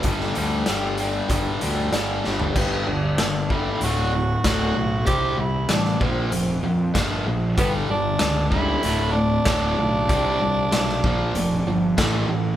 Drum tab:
CC |----------------|x---------------|----------------|----------------|
HH |x-x-x-x-x-x-x---|----x---x---x---|x---x---x---x---|x---x---x---x---|
SD |-o--o-------o-o-|----o-------o---|----oo------o---|----o-------o---|
FT |---------------o|----------------|----------------|----------------|
BD |o-------o-------|o-----o-----o---|o-----o-----o---|o-----o-----o---|

CC |----------------|
HH |x---x---x---x---|
SD |----oo------o---|
FT |----------------|
BD |o-----o-----o---|